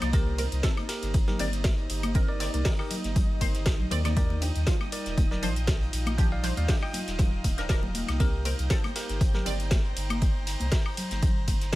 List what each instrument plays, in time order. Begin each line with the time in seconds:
Already playing: analog synth pad D#4 C5 F5 A#5, ambient pad C5, string machine D#5 D#6
0.01 sub bass C2, synth stab F3 D#4 D5, snare, closed hi-hat, high conga, high woodblock
0.13 synth stab D#3 C4 A#4, ambient pad A#3 D#4 G4, analog synth pad D#4, string machine D#4 D#6, tine electric piano G4 A#4, kick, closed hi-hat, ride
0.38 synth stab D#3 C4 A#4, closed hi-hat, open hi-hat, ride, muted conga
0.52 sub bass C2, closed hi-hat
0.63 synth stab D#3 C4 A4, kick, snare, closed hi-hat, ride
0.77 closed hi-hat, muted conga, high woodblock
0.89 tine electric piano G4 A#4, snare, closed hi-hat, open hi-hat, ride
1.02 sub bass G1, snare, closed hi-hat
1.14 kick, closed hi-hat, ride
1.21 analog synth pad G5
1.27 tine electric piano G4 A#4, snare, muted conga, low conga
1.39 sub bass G1, synth stab D#3 C4 D5, closed hi-hat, open hi-hat, ride
1.53 closed hi-hat
1.64 kick, snare, closed hi-hat, ride, muted conga
1.78 closed hi-hat
1.90 sub bass G1, closed hi-hat, open hi-hat, ride
2.03 closed hi-hat, high conga, high woodblock
2.14 synth stab D#3 C4 A#4, ambient pad D#5, kick, closed hi-hat, ride, muted conga
2.29 tine electric piano A#4 D5
2.40 synth stab D#3 C4 D5, snare, closed hi-hat, open hi-hat, ride
2.54 sub bass C2, tine electric piano A#4 D5, closed hi-hat, muted conga
2.65 synth stab D#3 C4 A#4, kick, snare, closed hi-hat, open hi-hat, ride
2.79 tine electric piano G4 A#4, high woodblock
2.91 closed hi-hat, open hi-hat, ride, low conga
3.04 sub bass G1, snare, closed hi-hat, muted conga
3.16 kick, closed hi-hat, ride, low conga
3.41 synth stab D#3 C4 C5, kick, closed hi-hat, open hi-hat, ride, muted conga
3.54 snare, closed hi-hat
3.66 sub bass A#1, kick, snare, closed hi-hat, ride
3.79 low conga
3.91 sub bass D#2, synth stab D#3 C4 D5, closed hi-hat, open hi-hat, ride, muted conga, high conga
4.04 synth stab D#3 C4 D5, snare, closed hi-hat, high conga, high woodblock
4.16 synth stab F3 D4 G4, ambient pad G3 F4 D#5, tine electric piano A#4 D5, kick, closed hi-hat, ride
4.30 muted conga
4.41 synth stab F3 D4 G4, closed hi-hat, open hi-hat, ride
4.55 sub bass D#2, closed hi-hat
4.67 synth stab F3 D4 F4, kick, snare, closed hi-hat, ride
4.81 closed hi-hat, muted conga, high woodblock
4.92 tine electric piano A#4 D5, closed hi-hat, open hi-hat, ride
5.03 sub bass D#1, analog synth pad F5, snare, closed hi-hat
5.17 kick, closed hi-hat, ride, muted conga
5.31 tine electric piano A#4 D5, snare, low conga
5.42 sub bass A#1, synth stab F3 D4 C5, closed hi-hat, open hi-hat, ride
5.56 closed hi-hat
5.67 kick, snare, closed hi-hat, ride, muted conga
5.82 closed hi-hat
5.93 sub bass A#1, closed hi-hat, open hi-hat, ride
6.06 closed hi-hat, muted conga, high conga, high woodblock
6.18 synth stab F3 D4 G4, ambient pad D#5, kick, closed hi-hat, ride
6.32 tine electric piano D5 F5
6.43 synth stab F3 D4 C5, snare, closed hi-hat, open hi-hat, ride
6.57 sub bass D#2, tine electric piano D5 F5, closed hi-hat, muted conga
6.68 synth stab F3 D4 G4, kick, snare, closed hi-hat, open hi-hat, ride
6.82 tine electric piano D#5 G5, high woodblock
6.93 closed hi-hat, open hi-hat, ride, muted conga, low conga
7.07 sub bass D#1, snare, closed hi-hat
7.19 kick, snare, closed hi-hat, ride, low conga
7.44 sub bass D#1, kick, closed hi-hat, open hi-hat, ride, muted conga
7.58 synth stab F3 D4 A#4, snare, closed hi-hat
7.69 synth stab F3 D4 A#4, kick, snare, closed hi-hat, ride
7.83 muted conga, low conga
7.94 closed hi-hat, open hi-hat, ride, high conga
8.08 sub bass C2, snare, closed hi-hat, high conga, high woodblock
8.20 synth stab D#3 C4 A#4, ambient pad A#3 G4 C5, tine electric piano G4 A#4, string machine G5 G6, kick, closed hi-hat, ride
8.36 analog synth pad C5
8.45 synth stab D#3 C4 A#4, closed hi-hat, open hi-hat, ride, muted conga
8.50 analog synth pad A#5
8.59 sub bass C2, closed hi-hat
8.70 synth stab D#3 C4 A4, kick, snare, closed hi-hat, ride
8.84 closed hi-hat, muted conga, high woodblock
8.96 tine electric piano G4 A#4, snare, closed hi-hat, open hi-hat, ride
9.09 sub bass G1, snare, closed hi-hat
9.21 kick, closed hi-hat, ride
9.34 tine electric piano G4 A#4, snare, muted conga, low conga
9.45 sub bass G1, synth stab D#3 C4 D5, closed hi-hat, open hi-hat, ride
9.60 closed hi-hat
9.71 kick, snare, closed hi-hat, ride, muted conga
9.85 closed hi-hat
9.97 sub bass G1, closed hi-hat, open hi-hat, ride
10.10 closed hi-hat, high conga, high woodblock
10.21 kick, closed hi-hat, ride
10.47 snare, closed hi-hat, open hi-hat, ride
10.60 sub bass C2, closed hi-hat, muted conga
10.72 kick, snare, closed hi-hat, open hi-hat, ride
10.86 high woodblock
10.97 closed hi-hat, open hi-hat, ride, low conga
11.11 sub bass G1, snare, closed hi-hat, muted conga
11.22 kick, closed hi-hat, ride, low conga
11.48 kick, closed hi-hat, open hi-hat, ride, muted conga
11.61 snare, closed hi-hat